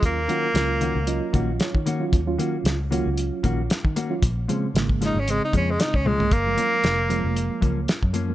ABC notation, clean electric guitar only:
X:1
M:4/4
L:1/8
Q:"Swing 16ths" 1/4=115
K:Ebdor
V:1 name="Clean electric guitar"
z [E,B,DG] z [E,B,DG] z [E,B,DG] z [E,B,DG] | z [E,B,DG] z [E,B,DG] z [E,B,DG] z [E,B,DG] | z [B,,F,A,D] z [B,,F,A,D] z [B,,F,A,D] z [B,,F,A,D] | z [G,,F,B,D] z [G,,F,B,D] z [G,,F,B,D] z [G,,F,B,D] |]